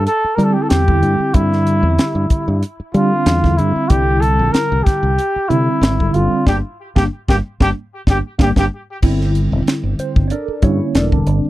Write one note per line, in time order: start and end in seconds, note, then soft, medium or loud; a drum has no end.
0.06 0.36 A4 loud
0.06 closed hi-hat medium
0.24 muted fingered electric bass stroke soft
0.35 0.84 D3 medium
0.35 0.84 G3 medium
0.35 0.55 G3 medium
0.35 0.84 C4 medium
0.35 0.84 E4 medium
0.35 0.45 A#4 medium
0.39 closed hi-hat soft
0.44 0.54 A4 medium
0.53 0.63 G4 medium
0.62 0.68 A4 medium
0.69 1.01 E2 medium
0.69 1.35 G4 medium
0.69 snare medium
0.69 closed hi-hat medium
0.87 1.31 D3 medium
0.87 1.31 G3 medium
0.87 1.31 C4 medium
0.87 1.31 E4 medium
0.87 kick medium
1.02 1.19 G2 medium
1.02 closed hi-hat medium
1.20 muted fingered electric bass stroke soft
1.34 1.82 G2 medium
1.34 2.54 D3 medium
1.34 2.54 G3 medium
1.34 2.54 C4 medium
1.34 2.62 E4 medium
1.34 2.54 G4 medium
1.34 kick medium
1.34 closed hi-hat medium
1.52 snare soft
1.67 closed hi-hat medium
1.83 1.97 E2 medium
1.97 muted fingered electric bass stroke soft
1.97 snare loud
1.97 closed hi-hat medium
2.15 2.29 G2 medium
2.30 muted fingered electric bass stroke soft
2.30 kick medium
2.30 closed hi-hat medium
2.48 2.62 G2 medium
2.63 closed hi-hat medium
2.80 muted fingered electric bass stroke soft
2.94 3.40 D3 medium
2.94 3.40 G3 medium
2.94 3.11 G3 medium
2.94 3.40 C4 medium
2.94 3.40 D4 medium
2.94 3.58 F4 medium
2.94 closed hi-hat medium
3.26 3.57 E2 medium
3.26 snare loud
3.26 closed hi-hat medium
3.44 3.87 D3 medium
3.44 3.88 G3 medium
3.44 3.87 C4 medium
3.44 3.87 E4 medium
3.44 kick medium
3.44 snare soft
3.57 3.75 G2 medium
3.57 3.90 E4 medium
3.57 closed hi-hat medium
3.76 muted fingered electric bass stroke soft
3.88 4.38 C2 medium
3.88 5.10 D3 medium
3.88 5.10 G3 medium
3.88 5.10 C4 medium
3.88 5.10 E4 medium
3.88 4.22 G4 loud
3.88 kick loud
3.88 closed hi-hat medium
4.20 4.53 A4 medium
4.20 closed hi-hat medium
4.39 4.54 A#1 medium
4.52 4.85 A#4 medium
4.52 snare medium
4.52 closed hi-hat medium
4.72 4.86 C2 medium
4.83 5.50 G4 medium
4.83 kick medium
4.83 snare soft
4.83 closed hi-hat medium
5.03 5.17 C2 medium
5.19 closed hi-hat medium
5.36 muted fingered electric bass stroke soft
5.48 5.67 C3 medium
5.48 5.96 D3 medium
5.48 5.96 G3 medium
5.48 5.96 C4 medium
5.48 6.15 E4 medium
5.48 5.96 E4 medium
5.48 closed hi-hat soft
5.81 6.13 G#1 medium
5.81 snare loud
5.81 closed hi-hat medium
6.00 6.13 D3 medium
6.00 6.14 G3 medium
6.00 6.14 C4 medium
6.00 6.15 E4 medium
6.00 kick medium
6.13 6.31 G1 medium
6.13 6.47 D3 medium
6.13 6.46 G3 medium
6.13 6.47 C4 medium
6.13 6.46 F4 medium
6.13 6.47 F4 medium
6.13 closed hi-hat medium
6.32 muted fingered electric bass stroke soft
6.46 6.60 G1 medium
6.46 6.59 G3 medium
6.46 6.58 A#3 medium
6.46 6.59 D4 medium
6.46 6.56 G4 medium
6.46 kick medium
6.46 snare medium
6.95 7.07 G1 medium
6.95 7.05 G3 medium
6.95 7.05 A#3 medium
6.95 7.05 D4 medium
6.95 7.04 G4 medium
6.95 kick medium
6.95 snare medium
7.28 7.40 G1 medium
7.28 7.38 G3 medium
7.28 7.38 A#3 medium
7.28 7.38 D4 medium
7.28 7.36 G4 medium
7.28 kick medium
7.28 snare medium
7.60 7.71 G1 medium
7.60 7.70 G3 medium
7.60 7.70 A#3 medium
7.60 7.70 D4 loud
7.60 7.68 G4 medium
7.60 kick medium
7.60 snare medium
8.07 8.20 G1 medium
8.07 8.19 G3 medium
8.07 8.19 A#3 medium
8.07 8.19 D4 medium
8.07 8.17 G4 medium
8.07 kick medium
8.07 snare medium
8.39 8.52 G1 medium
8.39 8.50 G3 medium
8.39 8.50 A#3 medium
8.39 8.50 D4 medium
8.39 8.49 G4 medium
8.39 kick loud
8.39 snare medium
8.56 8.67 G1 medium
8.56 8.66 G3 medium
8.56 8.66 A#3 medium
8.56 8.66 D4 medium
8.56 8.65 G4 medium
8.56 kick medium
8.56 snare medium
9.02 9.50 G1 medium
9.02 10.22 D3 medium
9.02 10.22 G3 medium
9.02 9.98 C4 medium
9.02 10.22 E4 medium
9.02 kick loud
9.02 crash loud
9.21 snare soft
9.35 closed hi-hat medium
9.52 9.65 E1 medium
9.66 muted fingered electric bass stroke soft
9.66 snare loud
9.66 closed hi-hat medium
9.84 9.98 G1 medium
9.99 10.30 C4 medium
9.99 10.31 C5 medium
9.99 muted fingered electric bass stroke soft
9.99 closed hi-hat medium
10.16 10.30 G1 medium
10.16 kick medium
10.28 10.32 C#5 medium
10.28 10.62 D5 medium
10.28 closed hi-hat medium
10.32 10.63 D4 medium
10.32 10.63 A4 medium
10.32 10.63 A#4 medium
10.48 muted fingered electric bass stroke soft
10.62 10.79 G2 medium
10.62 11.09 D3 medium
10.62 11.09 G3 medium
10.62 11.09 A#3 medium
10.62 10.95 C#4 medium
10.62 11.09 E4 medium
10.62 10.95 C#5 medium
10.62 kick medium
10.62 closed hi-hat medium
10.95 11.25 E1 medium
10.95 11.12 D4 medium
10.95 11.27 A4 medium
10.95 11.27 A#4 medium
10.95 11.27 D5 medium
10.95 snare loud
10.95 closed hi-hat medium
11.12 11.50 D3 medium
11.12 11.50 G3 medium
11.12 11.50 C4 medium
11.12 11.50 D4 medium
11.12 kick medium
11.27 11.44 G1 medium
11.27 closed hi-hat medium
11.44 muted fingered electric bass stroke soft